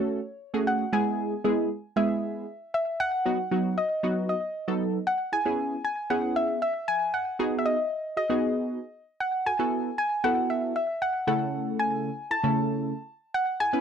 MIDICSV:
0, 0, Header, 1, 3, 480
1, 0, Start_track
1, 0, Key_signature, 4, "major"
1, 0, Tempo, 517241
1, 1102, Time_signature, 4, 2, 24, 8
1, 12813, End_track
2, 0, Start_track
2, 0, Title_t, "Synth pluck"
2, 0, Program_c, 0, 84
2, 0, Note_on_c, 0, 73, 81
2, 624, Note_on_c, 0, 78, 96
2, 653, Note_off_c, 0, 73, 0
2, 864, Note_on_c, 0, 80, 100
2, 870, Note_off_c, 0, 78, 0
2, 1824, Note_on_c, 0, 76, 97
2, 1852, Note_off_c, 0, 80, 0
2, 2533, Note_off_c, 0, 76, 0
2, 2544, Note_on_c, 0, 76, 92
2, 2784, Note_on_c, 0, 78, 100
2, 2791, Note_off_c, 0, 76, 0
2, 3504, Note_on_c, 0, 75, 84
2, 3525, Note_off_c, 0, 78, 0
2, 3972, Note_off_c, 0, 75, 0
2, 3983, Note_on_c, 0, 75, 79
2, 4666, Note_off_c, 0, 75, 0
2, 4704, Note_on_c, 0, 78, 96
2, 4811, Note_off_c, 0, 78, 0
2, 4944, Note_on_c, 0, 80, 113
2, 5413, Note_off_c, 0, 80, 0
2, 5424, Note_on_c, 0, 80, 99
2, 5647, Note_off_c, 0, 80, 0
2, 5663, Note_on_c, 0, 78, 97
2, 5903, Note_on_c, 0, 76, 95
2, 5910, Note_off_c, 0, 78, 0
2, 6132, Note_off_c, 0, 76, 0
2, 6143, Note_on_c, 0, 76, 93
2, 6366, Note_off_c, 0, 76, 0
2, 6384, Note_on_c, 0, 80, 104
2, 6607, Note_off_c, 0, 80, 0
2, 6624, Note_on_c, 0, 78, 101
2, 7009, Note_off_c, 0, 78, 0
2, 7039, Note_on_c, 0, 76, 70
2, 7103, Note_off_c, 0, 76, 0
2, 7104, Note_on_c, 0, 75, 94
2, 7572, Note_off_c, 0, 75, 0
2, 7583, Note_on_c, 0, 75, 81
2, 8266, Note_off_c, 0, 75, 0
2, 8542, Note_on_c, 0, 78, 85
2, 8783, Note_on_c, 0, 80, 97
2, 8789, Note_off_c, 0, 78, 0
2, 9252, Note_off_c, 0, 80, 0
2, 9263, Note_on_c, 0, 80, 91
2, 9502, Note_on_c, 0, 78, 96
2, 9510, Note_off_c, 0, 80, 0
2, 9726, Note_off_c, 0, 78, 0
2, 9743, Note_on_c, 0, 76, 89
2, 9972, Note_off_c, 0, 76, 0
2, 9983, Note_on_c, 0, 76, 85
2, 10225, Note_on_c, 0, 78, 99
2, 10230, Note_off_c, 0, 76, 0
2, 10453, Note_off_c, 0, 78, 0
2, 10464, Note_on_c, 0, 78, 97
2, 10945, Note_on_c, 0, 80, 104
2, 10958, Note_off_c, 0, 78, 0
2, 11390, Note_off_c, 0, 80, 0
2, 11424, Note_on_c, 0, 81, 103
2, 12106, Note_off_c, 0, 81, 0
2, 12383, Note_on_c, 0, 78, 97
2, 12491, Note_off_c, 0, 78, 0
2, 12623, Note_on_c, 0, 80, 114
2, 12813, Note_off_c, 0, 80, 0
2, 12813, End_track
3, 0, Start_track
3, 0, Title_t, "Analog polysynth"
3, 0, Program_c, 1, 90
3, 0, Note_on_c, 1, 57, 80
3, 0, Note_on_c, 1, 61, 72
3, 0, Note_on_c, 1, 66, 71
3, 0, Note_on_c, 1, 69, 88
3, 186, Note_off_c, 1, 57, 0
3, 187, Note_off_c, 1, 61, 0
3, 188, Note_off_c, 1, 66, 0
3, 188, Note_off_c, 1, 69, 0
3, 498, Note_on_c, 1, 57, 74
3, 501, Note_on_c, 1, 61, 71
3, 501, Note_on_c, 1, 66, 72
3, 503, Note_on_c, 1, 68, 87
3, 786, Note_off_c, 1, 57, 0
3, 787, Note_off_c, 1, 61, 0
3, 787, Note_off_c, 1, 66, 0
3, 788, Note_off_c, 1, 68, 0
3, 859, Note_on_c, 1, 56, 80
3, 861, Note_on_c, 1, 59, 73
3, 862, Note_on_c, 1, 64, 72
3, 864, Note_on_c, 1, 68, 89
3, 1245, Note_off_c, 1, 56, 0
3, 1246, Note_off_c, 1, 59, 0
3, 1246, Note_off_c, 1, 64, 0
3, 1247, Note_off_c, 1, 68, 0
3, 1340, Note_on_c, 1, 56, 80
3, 1341, Note_on_c, 1, 59, 75
3, 1343, Note_on_c, 1, 64, 70
3, 1344, Note_on_c, 1, 68, 89
3, 1570, Note_off_c, 1, 56, 0
3, 1570, Note_off_c, 1, 59, 0
3, 1571, Note_off_c, 1, 64, 0
3, 1572, Note_off_c, 1, 68, 0
3, 1820, Note_on_c, 1, 56, 76
3, 1822, Note_on_c, 1, 59, 72
3, 1824, Note_on_c, 1, 64, 72
3, 1825, Note_on_c, 1, 68, 83
3, 2278, Note_off_c, 1, 56, 0
3, 2279, Note_off_c, 1, 59, 0
3, 2280, Note_off_c, 1, 64, 0
3, 2281, Note_off_c, 1, 68, 0
3, 3020, Note_on_c, 1, 54, 77
3, 3022, Note_on_c, 1, 59, 72
3, 3023, Note_on_c, 1, 63, 71
3, 3025, Note_on_c, 1, 66, 89
3, 3136, Note_off_c, 1, 54, 0
3, 3136, Note_off_c, 1, 59, 0
3, 3137, Note_off_c, 1, 63, 0
3, 3138, Note_off_c, 1, 66, 0
3, 3260, Note_on_c, 1, 54, 75
3, 3261, Note_on_c, 1, 59, 72
3, 3263, Note_on_c, 1, 63, 74
3, 3264, Note_on_c, 1, 66, 84
3, 3489, Note_off_c, 1, 54, 0
3, 3490, Note_off_c, 1, 59, 0
3, 3491, Note_off_c, 1, 63, 0
3, 3492, Note_off_c, 1, 66, 0
3, 3741, Note_on_c, 1, 54, 77
3, 3743, Note_on_c, 1, 59, 72
3, 3745, Note_on_c, 1, 63, 69
3, 3746, Note_on_c, 1, 66, 88
3, 4027, Note_off_c, 1, 54, 0
3, 4028, Note_off_c, 1, 59, 0
3, 4029, Note_off_c, 1, 63, 0
3, 4030, Note_off_c, 1, 66, 0
3, 4340, Note_on_c, 1, 54, 76
3, 4341, Note_on_c, 1, 59, 71
3, 4342, Note_on_c, 1, 63, 69
3, 4344, Note_on_c, 1, 69, 82
3, 4626, Note_off_c, 1, 54, 0
3, 4627, Note_off_c, 1, 59, 0
3, 4628, Note_off_c, 1, 63, 0
3, 4629, Note_off_c, 1, 69, 0
3, 4940, Note_on_c, 1, 64, 80
3, 4945, Note_on_c, 1, 68, 89
3, 4999, Note_off_c, 1, 64, 0
3, 5001, Note_off_c, 1, 68, 0
3, 5060, Note_on_c, 1, 59, 75
3, 5063, Note_on_c, 1, 61, 68
3, 5064, Note_on_c, 1, 64, 72
3, 5066, Note_on_c, 1, 68, 87
3, 5347, Note_off_c, 1, 59, 0
3, 5348, Note_off_c, 1, 61, 0
3, 5349, Note_off_c, 1, 64, 0
3, 5349, Note_off_c, 1, 68, 0
3, 5661, Note_on_c, 1, 59, 81
3, 5662, Note_on_c, 1, 61, 72
3, 5664, Note_on_c, 1, 64, 73
3, 5666, Note_on_c, 1, 68, 88
3, 6118, Note_off_c, 1, 59, 0
3, 6119, Note_off_c, 1, 61, 0
3, 6120, Note_off_c, 1, 64, 0
3, 6121, Note_off_c, 1, 68, 0
3, 6860, Note_on_c, 1, 59, 77
3, 6862, Note_on_c, 1, 63, 75
3, 6864, Note_on_c, 1, 66, 76
3, 6865, Note_on_c, 1, 68, 92
3, 7204, Note_off_c, 1, 59, 0
3, 7205, Note_off_c, 1, 63, 0
3, 7206, Note_off_c, 1, 66, 0
3, 7206, Note_off_c, 1, 68, 0
3, 7579, Note_on_c, 1, 66, 76
3, 7583, Note_on_c, 1, 68, 85
3, 7638, Note_off_c, 1, 66, 0
3, 7640, Note_off_c, 1, 68, 0
3, 7698, Note_on_c, 1, 59, 80
3, 7699, Note_on_c, 1, 63, 73
3, 7701, Note_on_c, 1, 66, 74
3, 7702, Note_on_c, 1, 68, 85
3, 8157, Note_off_c, 1, 59, 0
3, 8158, Note_off_c, 1, 63, 0
3, 8158, Note_off_c, 1, 66, 0
3, 8159, Note_off_c, 1, 68, 0
3, 8779, Note_on_c, 1, 66, 81
3, 8784, Note_on_c, 1, 69, 86
3, 8838, Note_off_c, 1, 66, 0
3, 8840, Note_off_c, 1, 69, 0
3, 8900, Note_on_c, 1, 59, 76
3, 8902, Note_on_c, 1, 64, 68
3, 8903, Note_on_c, 1, 66, 70
3, 8905, Note_on_c, 1, 69, 85
3, 9187, Note_off_c, 1, 59, 0
3, 9188, Note_off_c, 1, 64, 0
3, 9188, Note_off_c, 1, 66, 0
3, 9189, Note_off_c, 1, 69, 0
3, 9501, Note_on_c, 1, 59, 77
3, 9503, Note_on_c, 1, 64, 74
3, 9504, Note_on_c, 1, 66, 72
3, 9506, Note_on_c, 1, 69, 86
3, 9958, Note_off_c, 1, 59, 0
3, 9959, Note_off_c, 1, 64, 0
3, 9960, Note_off_c, 1, 66, 0
3, 9961, Note_off_c, 1, 69, 0
3, 10460, Note_on_c, 1, 49, 80
3, 10461, Note_on_c, 1, 57, 73
3, 10462, Note_on_c, 1, 61, 75
3, 10463, Note_on_c, 1, 64, 75
3, 10465, Note_on_c, 1, 69, 89
3, 11229, Note_off_c, 1, 49, 0
3, 11230, Note_off_c, 1, 57, 0
3, 11230, Note_off_c, 1, 61, 0
3, 11231, Note_off_c, 1, 64, 0
3, 11232, Note_off_c, 1, 69, 0
3, 11421, Note_on_c, 1, 64, 76
3, 11425, Note_on_c, 1, 69, 85
3, 11479, Note_off_c, 1, 64, 0
3, 11481, Note_off_c, 1, 69, 0
3, 11539, Note_on_c, 1, 49, 79
3, 11540, Note_on_c, 1, 57, 72
3, 11542, Note_on_c, 1, 61, 71
3, 11543, Note_on_c, 1, 64, 70
3, 11544, Note_on_c, 1, 69, 84
3, 11998, Note_off_c, 1, 49, 0
3, 11998, Note_off_c, 1, 57, 0
3, 11999, Note_off_c, 1, 61, 0
3, 11999, Note_off_c, 1, 64, 0
3, 12000, Note_off_c, 1, 69, 0
3, 12620, Note_on_c, 1, 64, 76
3, 12625, Note_on_c, 1, 68, 86
3, 12678, Note_off_c, 1, 64, 0
3, 12681, Note_off_c, 1, 68, 0
3, 12741, Note_on_c, 1, 59, 76
3, 12742, Note_on_c, 1, 61, 71
3, 12744, Note_on_c, 1, 64, 69
3, 12746, Note_on_c, 1, 71, 86
3, 12813, Note_off_c, 1, 59, 0
3, 12813, Note_off_c, 1, 61, 0
3, 12813, Note_off_c, 1, 64, 0
3, 12813, Note_off_c, 1, 71, 0
3, 12813, End_track
0, 0, End_of_file